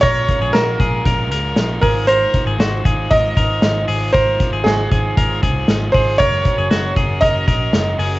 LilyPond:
<<
  \new Staff \with { instrumentName = "Upright piano" } { \time 4/4 \key aes \mixolydian \tempo 4 = 117 des''4 bes'4. r4 bes'8 | c''4. r8 ees''4. r8 | c''4 aes'4. r4 c''8 | des''4. r8 ees''4. r8 | }
  \new Staff \with { instrumentName = "Clean electric guitar" } { \time 4/4 \key aes \mixolydian bes'8. aes'16 ges'8 aes'8 bes'8 bes'4 aes'8 | bes'8. aes'16 ges'8 aes'8 bes'8 bes'4 aes'8 | bes'8. aes'16 ges'8 aes'8 bes'8 aes'4 aes'8 | bes'8. aes'16 ges'8 aes'8 bes'8 bes'4 aes'8 | }
  \new Staff \with { instrumentName = "Overdriven electric guitar" } { \time 4/4 \key aes \mixolydian <bes, f aes des' f' bes'>8 <aes des' f' bes'>8 <bes, f aes des' f' bes'>8 <aes des' f' bes'>8 <aes des' f' bes'>8 <aes des' f' bes'>8 <bes, f aes des' f' bes'>8 <ees' f' c''>8 | <aes ees' f' c''>8 <ees' f' c''>8 <aes ees' f' c''>8 <ees' f' c''>8 <aes ees' f' c''>8 <ees' f' c''>8 <aes ees' f' c''>8 <ees' f' c''>8 | <aes ees' f' c''>8 <ees' f' c''>8 <aes ees' f' c''>8 <ees' f' c''>8 <aes ees' f' c''>8 <ees' f' c''>8 <aes ees' f' c''>8 <ees' f' c''>8 | <ges aes des' ges' bes'>8 <des' ges' bes'>8 <ges aes des' ges' bes'>8 <des' ges' bes'>8 <aes des' ges' bes'>8 <des' ges' bes'>8 <ges aes des' ges' bes'>8 <des' ges' bes'>8 | }
  \new Staff \with { instrumentName = "Picked electric bass" } { \clef bass \time 4/4 \key aes \mixolydian bes,,8 r16 bes,,16 bes,,8 bes,,8 bes,,8 des,8 bes,,8 aes,,8~ | aes,,8 r16 aes,,16 aes,,8 aes,,8 aes,,8 aes,,8 aes,,8 aes,,8 | aes,,8 r16 aes,,16 aes,,8 aes,,8 aes,,8 c,8 aes,,8 aes,,8 | ges,,8 r16 ges,,16 ges,,8 ges,,8 ges,,8 bes,,8 ges,,8 ges,,8 | }
  \new DrumStaff \with { instrumentName = "Drums" } \drummode { \time 4/4 <hh bd>8 <hh bd>8 <hh sn>8 <hh bd>8 <hh bd>8 hh8 <hh sn>8 <hho bd>8 | hh8 <hh bd>8 <hh sn>8 <hh bd>8 <hh bd>8 <hh bd>8 <hh sn>8 hho8 | <hh bd>8 <hh bd>8 <hh sn>8 <hh bd>8 <hh bd>8 <hh bd>8 <hh sn>8 <hho bd>8 | <hh bd>8 <hh bd>8 <hh sn>8 <hh bd>8 <hh bd>8 <hh bd>8 <hh sn>8 hho8 | }
>>